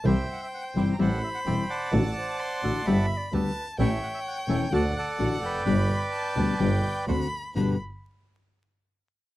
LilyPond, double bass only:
\new Staff \with { instrumentName = "Double bass" } { \clef bass \time 4/4 \key g \major \tempo 4 = 128 c,8 r4 g,,8 a,,8 r8 e,,8 r8 | a,,8 r4 a,,8 g,,8 r8 d,8 r8 | a,,8 r4 e,,8 d,8 r8 a,,8 f,,8 | g,,8 r4 d,8 g,,8 r8 d,8 r8 |
g,,8 r2. r8 | }